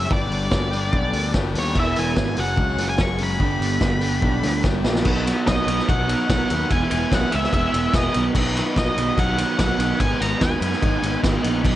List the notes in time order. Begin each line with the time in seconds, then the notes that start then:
Already playing: E5
0.08 G1 G3 B3 D4 G4 A4 D5 G5 B5, kick
0.13 D5
0.29 G1, open hi-hat
0.51 G1, kick, snare
0.71 G3 B3 D4 G4, open hi-hat
0.93 B1, kick
1.13 D2, open hi-hat
1.32 G1 G3 B3 D4 G4, kick, snare
1.54 D#2, snare, open hi-hat
1.59 C#5
1.73 E1 E2 E3 G#3 B3 E4 G#4 B4 E5, kick, crash
1.77 G#4 E5
1.96 E1 G#5, open hi-hat
2.16 G#1, kick, snare
2.36 F#1 F#3 G#3 C#4 F#4 G#4 C#5 F#5 C#6, open hi-hat
2.40 F#5
2.57 C#2, kick
2.77 F#1, snare, open hi-hat
2.90 G#5
2.98 F#1 F#3 G#3 C#4 G#4 C#6, kick, snare
3.18 F#3 C#4 F#4 G#4, open hi-hat
3.23 B5
3.37 G1 G3 B3 D4 A4 D5 G5 B5, kick
3.43 G4
3.60 G1, open hi-hat
3.81 G1, kick, snare
4.01 G3 B3 D4 G4, open hi-hat
4.20 B1 G3 B3 D4 A4, kick
4.43 D2, snare, open hi-hat
4.63 G1 G3 B3 D4 G4, kick, snare
4.84 A#1, snare
4.95 snare
5.03 B1 B2 D#3 F#3 B3 D#4 B4 D#5 F#5 D#6, kick, crash
5.24 B2 D#3 F#3 B3 D#4 B4, snare, ride
5.45 B1 B2 D#3 F#3 B3 D#4 B4 D#5, kick, snare, ride
5.66 B1 B2 D#3 F#3 B3 D#4 B4, ride
5.79 snare
5.87 B1 B2 D#3 F#3 B3 D#4 B4 F#5, kick, ride
6.06 B2 D#3 F#3 B3 D#4 B4, ride
6.28 B1 B2 D#3 F#3 B3 D#4 B4 F#5, kick, snare, ride
6.50 D#2 B2 D#3 F#3 B3 D#4 B4, ride
6.69 E1 E2 E3 G#3 B3 E4 G#4 B4 E5 G#5 E6, kick, ride
6.91 E1 E2 E3 G#3 B3 E4 G#4, ride
7.11 B1 E2 E3 G#3 B3 E4 G#4 F#5, kick, snare, ride
7.31 C#2 E2 E3 G#3 B3 E4 G#4 E5, ride
7.44 snare
7.51 E1 E2 E3 G#3 B3 E4 G#4 E5, kick, ride
7.72 E1 E2 E3 G#3 B3 E4 G#4, ride
7.92 E1 E2 E3 G#3 B3 E4 G#4 D#5, kick, snare, ride
8.13 B1 B2 D#3 F#3 B3 D#4 B4 D#5 F#5 D#6, ride
8.34 B1 B2 D#3 F#3 B3 D#4 B4, kick, crash
8.56 B2 D#3 F#3 B3 D#4 B4, snare, ride
8.75 B1 B2 D#3 F#3 B3 D#4 B4 D#5, kick, snare, ride
8.95 B1 B2 D#3 F#3 B3 D#4 B4, ride
9.15 B1 B2 D#3 F#3 B3 D#4 B4 F#5, kick, ride
9.37 B2 D#3 F#3 B3 D#4 B4, ride
9.56 B1 B2 D#3 F#3 B3 D#4 B4 F#5, kick, snare, ride
9.78 B1 B2 D#3 F#3 B3 D#4 B4, ride
9.98 G#1 G#2 D#3 G#3 B3 D#4 B4 G#5, kick, ride
10.19 G#1 G#2 D#3 G#3 B3 D#4 B4 A#5, snare, ride
10.39 D#2 G#2 D#3 G#3 B3 D#4 B4 G#5, kick, snare, ride
10.60 F#2 G#2 D#3 G#3 B3 D#4 B4, ride
10.72 snare
10.81 G#1 G#2 D#3 G#3 B3 D#4 B4, kick, ride
11.01 G#1 G#2 D#3 G#3 B3 D#4 B4, ride
11.21 G#1 G#2 D#3 G#3 B3 D#4 B4, kick, snare, ride
11.43 A#1 G#2 D#3 G#3 B3 D#4 B4, ride
11.61 B1 B2 D#3 F#3 B3 D#4 B4 F#5, kick, crash